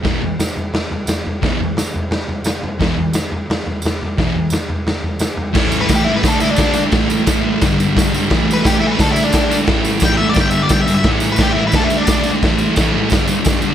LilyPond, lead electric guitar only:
\new Staff \with { instrumentName = "Lead electric guitar" } { \time 4/4 \key e \minor \tempo 4 = 174 r1 | r1 | r1 | r1 |
\tuplet 3/2 { r4 b'8 g'8 e'8 b'8 a'8 e'8 d'8~ } d'8 r8 | r1 | \tuplet 3/2 { r4 b'8 g'8 e'8 b'8 a'8 e'8 d'8~ } d'8 r8 | r4 \tuplet 3/2 { g''8 e''8 d''8 g''8 e''8 d''8 g''8 e''8 e''8 } |
\tuplet 3/2 { r4 b'8 g'8 e'8 b'8 a'8 e'8 d'8~ } d'8 r8 | r1 | }